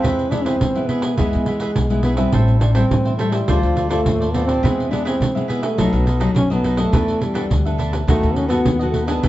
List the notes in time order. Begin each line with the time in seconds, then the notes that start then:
Already playing: G#3 C4 E4
0.02 E2 E3 E4 G#4 B4 E5, pandeiro
0.19 pandeiro
0.31 G#3 B3 D4 E4 G#4 B4 E5, pandeiro
0.44 C4 E4 G#4 B4 E5, pandeiro
0.61 B2 E3, pandeiro
0.75 G#3 B3 E4 G#4 B4 E5, pandeiro
0.87 B3 E4 G#4 B4 E5, pandeiro
1.02 G#4 B4 E5, pandeiro
1.18 E2 E3 G#3 B3 E4 G#4 B4 E5, pandeiro
1.33 E2, pandeiro
1.46 G#3 B3 E4 G#4 B4 E5, pandeiro
1.60 E4 G#4 B4 E5, pandeiro
1.76 B1 B2, pandeiro
1.90 G#3 B3 E4 G#4 B4 E5, pandeiro
2.03 B3 E4 G#4 B4 E5, pandeiro
2.16 G3 C4 E4 G#4 B4 E5, pandeiro
2.32 A1 A2 A4 C5 E5 G5, pandeiro
2.48 pandeiro
2.59 D4 A4 C5 E5 G5, pandeiro
2.73 G3 C4 E4 A4 C5 E5 G5, pandeiro
2.91 A2 E3, pandeiro
3.05 C5 E5 G5, pandeiro
3.17 G3 A3 C4 E4 A4 C5 E5 G5, pandeiro
3.32 G3 C5 E5 G5, pandeiro
3.48 D2 D3 A3 C4 F4 A4 C5 D5, pandeiro
3.63 D2 F3, pandeiro
3.76 F4 A4 C5 D5, pandeiro
3.89 A3 C4 F4 A4 C5 D5, pandeiro
4.06 D#2 A2, pandeiro
4.20 A4 C5 D5, pandeiro
4.32 A3 B3 C4 F4 A4 C5 D5, pandeiro
4.45 C4 C5 D5, pandeiro
4.49 A4
4.62 E2 E3 G#3 B3 E4 G#4 B4 E5, pandeiro
4.80 pandeiro
4.90 G#3 B3 D4 E4 G#4 B4 E5, pandeiro
5.05 C4 E4 G#4 B4 E5, pandeiro
5.20 B2 E3, pandeiro
5.35 G#3 B3 E4 G#4 B4 E5, pandeiro
5.48 B3 E4 G#4 B4 E5, pandeiro
5.63 A3 G#4 B4 E5, pandeiro
5.78 B1 B2 F#3 A3 D#4 A4 B4 D#5, pandeiro
5.93 B1 B3, pandeiro
6.06 D#4 A4 B4 D#5, pandeiro
6.20 F#3 A3 D#4 A4 B4 D#5, pandeiro
6.35 B1 F#2 C#4, pandeiro
6.50 F#3 A3 B3 D#4 A4 B4 D#5, pandeiro
6.64 D#4 A4 B4 D#5, pandeiro
6.77 A3 B3 D4 A4 B4 D#5, pandeiro
6.92 E2 E3 D4 A4 B4 E5, pandeiro
7.08 pandeiro
7.21 G3 D4 A4 B4 E5, pandeiro
7.34 B3 D4 A4 B4 E5, pandeiro
7.50 D2 B2, pandeiro
7.65 B3 D4 A4 B4 E5, pandeiro
7.78 D4 A4 B4 E5, pandeiro
7.93 A4 B4 E5, pandeiro
8.07 D#2 D#3 A3 B3 D#4 F#4 A4 B4 D#5, pandeiro
8.23 D#2, pandeiro
8.35 C#4 D#4 A4 B4 D#5, pandeiro
8.48 A3 B3 D#4 F#4 A4 B4 D#5, pandeiro
8.65 D#2 D#3, pandeiro
8.79 A3 B3 F#4 A4 B4 D#5, pandeiro
8.91 A3 D#4 A4, pandeiro
8.95 B4 D#5
9.06 B3 D4 G#4 A4 B4 D#5, pandeiro
9.23 E2 E3 D4 G#4 B4 E5, pandeiro